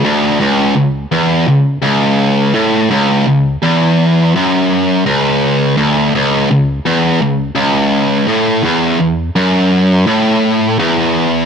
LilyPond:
\new Staff \with { instrumentName = "Distorted electric guitar" } { \clef bass \time 4/4 \key cis \minor \tempo 4 = 84 d,8 cis,8 cis,8 e,8 cis,8 cis,4 a,8 | cis,8 cis,8 e,4 fis,4 cis,4 | d,8 cis,8 cis,8 e,8 cis,8 cis,4 a,8 | e,8 e,8 fis,4 a,4 e,4 | }